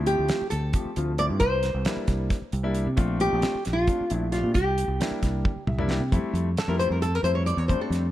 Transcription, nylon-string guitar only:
0.07 0.50 G4 medium
0.50 1.20 A4 medium
1.19 1.25 D5 medium
1.40 2.71 C5 loud
3.21 3.62 G4 loud
3.73 4.13 F4 medium
4.13 4.29 E4 medium
4.32 4.53 F4 medium
4.54 5.63 G4 medium
6.59 6.70 A4 medium
6.70 6.79 A#4 medium
6.79 6.90 C5 medium
6.92 7.02 A#4 medium
7.02 7.15 A4 medium
7.15 7.24 A#4 medium
7.24 7.35 C5 medium
7.35 7.46 C#5 medium
7.46 7.58 D5 medium
7.58 7.68 C#5 medium
7.68 7.79 C5 medium
7.81 8.12 A4 medium

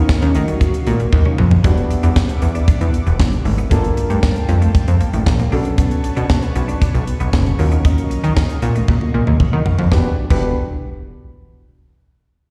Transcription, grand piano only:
0.00 1.34 F#3 medium
0.00 1.34 A#3 medium
0.00 1.35 C#4 medium
0.00 1.35 F5 medium
1.64 3.67 G3 medium
1.64 3.67 B3 medium
1.64 3.67 D4 medium
1.64 3.68 F#4 medium
3.70 5.48 A#3 medium
3.70 5.48 D4 medium
3.70 5.49 F4 medium
3.70 5.49 A4 medium
5.51 7.55 C#4 medium
5.51 7.55 D4 medium
5.51 7.55 F#4 medium
5.51 7.55 A4 medium
7.58 9.61 C#4 medium
7.58 9.62 F4 medium
7.58 9.62 F#4 medium
7.58 9.62 A#4 medium
9.92 10.06 D4 medium
9.92 10.06 F#4 medium
9.92 10.06 G4 medium
9.92 10.06 B4 medium
10.30 10.55 D4 medium
10.30 10.55 F#4 medium
10.30 10.54 G4 medium
10.30 10.54 B4 medium

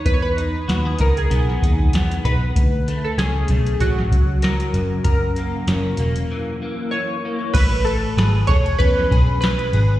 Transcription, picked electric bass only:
0.06 0.56 E2 loud
0.69 0.93 D#2 medium
1.00 1.25 C#2 medium
1.31 1.56 B1 medium
1.62 1.87 D#2 medium
1.93 2.18 E2 medium
2.25 2.50 B1 medium
2.56 3.06 D2 loud
3.18 3.43 C#2 medium
3.49 3.74 B1 medium
3.80 4.05 A1 medium
4.12 4.62 C#2 medium
4.74 4.99 F#1 medium
5.05 5.55 F#1 loud
5.67 5.92 F#1 medium
5.98 6.23 E1 medium
7.54 8.05 A1 loud
8.17 8.42 G#1 medium
8.49 8.74 E1 medium
8.80 9.05 E2 loud
9.11 9.61 B1 medium
9.73 9.98 G#1 medium

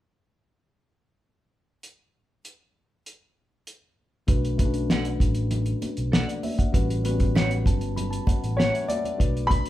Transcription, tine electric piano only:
4.27 4.49 A3 medium
4.27 4.49 D4 medium
4.27 4.49 F#4 medium
4.27 4.50 B4 medium
4.58 5.42 A3 medium
4.58 4.65 C#4 medium
4.58 5.43 F#4 medium
4.58 5.43 B4 medium
4.65 5.46 D4 medium
6.28 6.43 D5 medium
6.43 6.58 E5 medium
6.58 6.88 F#5 medium
6.72 6.94 G3 medium
6.72 6.94 C#4 medium
6.72 6.95 F#4 medium
6.72 6.95 B4 medium
7.03 7.88 G3 medium
7.03 7.11 B3 medium
7.03 7.88 F#4 medium
7.03 7.89 B4 medium
7.10 7.91 C#4 medium
7.66 7.95 A5 medium
7.96 8.11 B5 medium
8.11 8.26 A5 medium
8.27 8.56 F#5 medium
8.58 8.71 F#5 medium
8.72 8.87 E5 medium
8.72 8.88 F#5 medium
8.88 9.17 D5 medium
8.88 9.03 E5 medium
9.03 9.33 C#5 medium
9.17 9.70 A3 medium
9.17 9.70 D4 medium
9.17 9.70 F#4 medium
9.17 9.70 B4 medium

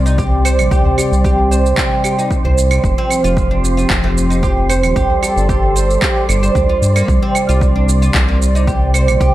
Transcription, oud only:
0.06 0.17 D#4 medium
0.18 0.44 G4 medium
0.45 0.70 C5 medium
0.71 0.97 G4 medium
0.98 1.11 G4 medium
1.25 1.50 G4 medium
1.51 1.76 C5 medium
1.78 2.03 G4 medium
2.04 2.18 G4 medium
2.19 2.44 D#4 medium
2.45 2.57 C5 medium
2.71 2.79 G3 medium
2.98 3.10 C4 loud
3.24 3.49 F4 loud
3.51 3.63 D4 medium
3.77 3.85 F4 medium
4.04 4.11 A3 medium
4.30 4.42 D#4 medium
4.43 4.68 G4 medium
4.70 4.95 C5 medium
4.96 5.21 G4 loud
5.23 5.36 G4 medium
5.49 5.75 G4 medium
5.76 6.01 C5 medium
6.02 6.15 G4 loud
6.29 6.42 D4 medium
6.43 6.55 C5 medium
6.56 6.69 D4 medium
6.69 6.81 F4 medium
6.96 7.07 A#3 medium
7.22 7.34 C4 medium
7.49 7.74 F4 medium
7.76 7.88 D4 medium
8.02 8.09 F4 medium
8.28 8.36 A#3 medium
8.55 8.67 D#4 medium
8.68 8.93 G4 medium
8.94 9.20 C5 medium
9.21 9.35 G4 loud

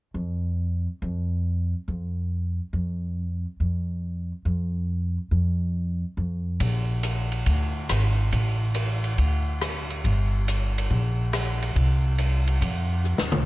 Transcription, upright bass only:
0.14 0.86 F2 medium
1.02 1.73 F2 medium
1.88 2.59 F2 medium
2.73 3.44 F2 medium
3.60 4.31 F2 medium
4.45 5.17 F2 medium
5.31 6.03 F2 medium
6.17 6.58 F2 medium
6.60 7.43 A#1 medium
7.46 7.87 D2 medium
7.90 8.30 G#1 medium
8.33 9.15 A1 medium
9.18 10.01 D2 medium
10.04 10.86 G1 medium
10.90 11.72 A#1 medium
11.76 12.58 C2 medium
12.61 13.15 F2 medium
13.19 13.32 D#2 medium
13.34 13.46 C2 medium

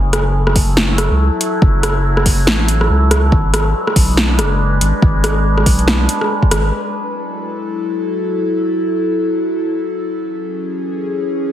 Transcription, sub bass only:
0.00 1.09 F#1 loud
1.11 1.30 C#2 loud
1.62 2.46 F#1 loud
2.47 2.88 A1 medium
2.89 3.31 C#2 medium
3.32 3.74 G#1 medium
3.96 4.40 B1 medium
4.39 4.80 F#1 medium
4.81 4.93 G#1 loud
5.02 5.65 G#1 loud
5.66 6.08 B1 loud
6.51 6.71 G#1 medium

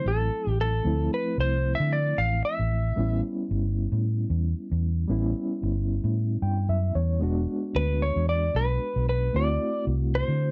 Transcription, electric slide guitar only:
0.08 0.60 A4 medium
0.61 1.14 A4 medium
1.14 1.40 B4 medium
1.40 1.72 C5 medium
1.75 1.93 E5 medium
1.93 2.19 D5 medium
2.18 2.45 F5 medium
2.45 3.20 E5 medium
7.76 8.03 B4 medium
8.02 8.27 C#5 medium
8.29 8.56 D5 medium
8.56 9.08 B4 medium
9.09 9.36 B4 medium
9.36 9.84 D5 medium
10.15 10.51 C5 loud

